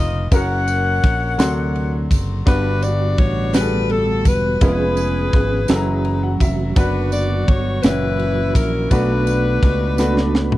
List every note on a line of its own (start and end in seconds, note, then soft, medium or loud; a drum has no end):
0.00 0.28 F1 medium
0.00 0.33 A#2 medium
0.00 0.27 C#3 medium
0.00 0.31 C#4 medium
0.00 0.29 D#4 medium
0.00 0.32 D#4 medium
0.00 0.29 F4 medium
0.00 0.33 F4 medium
0.00 0.33 B4 medium
0.00 0.31 D#5 loud
0.31 0.99 F#1 loud
0.31 1.14 C#4 medium
0.31 1.14 F#4 medium
0.31 1.15 A#4 medium
0.31 2.08 A#4 medium
0.31 2.08 C#5 medium
0.31 2.12 F#5 loud
0.31 kick loud
0.31 ride medium
0.31 tambourine medium
0.68 ride soft
0.68 tambourine medium
1.04 1.36 A#1 medium
1.04 kick loud
1.04 snare soft
1.04 ride medium
1.38 2.06 D2 loud
1.38 2.21 C3 medium
1.38 2.42 D3 medium
1.38 2.21 F#3 medium
1.38 2.22 D4 medium
1.38 2.22 F#4 medium
1.38 2.22 C6 medium
1.38 snare loud
1.38 ride medium
1.38 tambourine medium
1.76 ride soft
2.11 2.44 F#1 medium
2.11 kick medium
2.11 ride medium
2.11 tambourine soft
2.46 3.14 G1 medium
2.46 3.50 G2 medium
2.46 4.59 D3 medium
2.46 3.29 G3 medium
2.46 4.59 G3 medium
2.46 3.29 B3 medium
2.46 5.66 B3 medium
2.46 3.29 D4 medium
2.46 3.51 D4 medium
2.46 3.29 F#4 medium
2.46 4.59 F#4 medium
2.46 3.51 F#4 medium
2.46 3.29 B4 medium
2.46 2.81 B4 loud
2.46 kick loud
2.46 ride medium
2.46 tambourine medium
2.82 3.19 D5 loud
2.82 ride soft
2.82 tambourine medium
3.18 4.22 A1 medium
3.18 3.55 C#5 loud
3.18 kick medium
3.18 ride medium
3.53 4.36 G3 medium
3.53 4.36 B3 medium
3.53 4.37 D4 medium
3.53 4.37 F#4 medium
3.53 3.61 G#4 medium
3.53 3.90 B4 loud
3.53 snare loud
3.53 ride medium
3.53 tambourine medium
3.61 4.40 A4 medium
3.90 4.26 A4 medium
3.90 ride soft
4.25 4.58 E1 medium
4.25 4.62 B4 medium
4.25 kick medium
4.25 ride medium
4.25 tambourine medium
4.60 5.29 F1 loud
4.60 5.67 F3 medium
4.60 5.44 G#3 medium
4.60 5.44 B3 medium
4.60 5.67 C#4 medium
4.60 5.44 C#4 medium
4.60 5.44 F4 medium
4.60 5.67 G#4 medium
4.60 6.37 G#4 medium
4.60 5.44 B4 medium
4.60 6.37 B4 loud
4.60 kick loud
4.60 ride medium
4.60 tambourine soft
4.97 ride soft
4.97 tambourine medium
5.33 5.66 G#1 medium
5.33 kick loud
5.33 snare soft
5.33 ride medium
5.68 6.37 F#1 loud
5.68 6.75 E3 medium
5.68 6.75 F#3 medium
5.68 6.51 F#3 medium
5.68 6.75 C#4 medium
5.68 6.51 C#4 medium
5.68 6.52 E4 medium
5.68 10.58 F#4 medium
5.68 6.52 F#4 medium
5.68 5.76 A4 medium
5.68 snare loud
5.68 ride medium
5.68 tambourine medium
5.76 6.04 A#5 medium
6.05 6.21 A#5 medium
6.05 ride soft
6.23 6.39 F#5 medium
6.40 6.73 F1 loud
6.40 6.74 E5 medium
6.40 kick medium
6.40 ride medium
6.40 tambourine soft
6.76 7.44 F#1 loud
6.76 7.83 D3 medium
6.76 7.83 F#3 medium
6.76 7.83 B3 medium
6.76 7.59 D4 medium
6.76 7.81 D4 medium
6.76 7.59 F#4 medium
6.76 7.80 F#4 medium
6.76 7.59 B4 medium
6.76 7.10 B4 loud
6.76 kick loud
6.76 ride medium
6.76 tambourine medium
7.12 7.45 D5 loud
7.12 ride soft
7.12 tambourine medium
7.48 7.81 G1 medium
7.48 7.83 C#5 loud
7.48 kick loud
7.48 ride medium
7.83 8.51 F#1 loud
7.83 8.66 A#2 medium
7.83 8.90 E3 medium
7.83 8.90 F#3 medium
7.83 8.66 C#4 medium
7.83 8.91 C#4 medium
7.83 8.67 E4 medium
7.83 8.88 E4 medium
7.83 8.67 F#4 medium
7.83 8.55 B4 loud
7.83 8.67 C#5 medium
7.83 snare loud
7.83 ride medium
7.83 tambourine medium
8.19 ride soft
8.55 8.88 A#1 loud
8.55 8.91 A#4 medium
8.55 kick medium
8.55 ride medium
8.55 tambourine medium
8.91 9.58 B1 loud
8.91 9.94 B2 medium
8.91 9.73 A3 medium
8.91 10.58 A3 medium
8.91 9.74 B3 medium
8.91 10.58 B3 medium
8.91 9.74 D4 medium
8.91 10.58 D4 medium
8.91 9.74 F#4 medium
8.91 10.58 F#4 medium
8.91 10.58 B4 loud
8.91 9.74 B4 medium
8.91 kick loud
8.91 ride medium
8.91 tambourine soft
9.27 ride soft
9.27 tambourine medium
9.62 10.58 C#2 loud
9.62 kick medium
9.62 snare soft
9.62 ride medium
9.98 10.58 A3 medium
9.98 10.58 B3 medium
9.98 10.58 D4 medium
9.98 10.58 F#4 medium
9.98 10.58 B4 medium
9.98 snare medium
9.98 tambourine medium
10.17 snare medium
10.35 snare medium
10.52 mid tom medium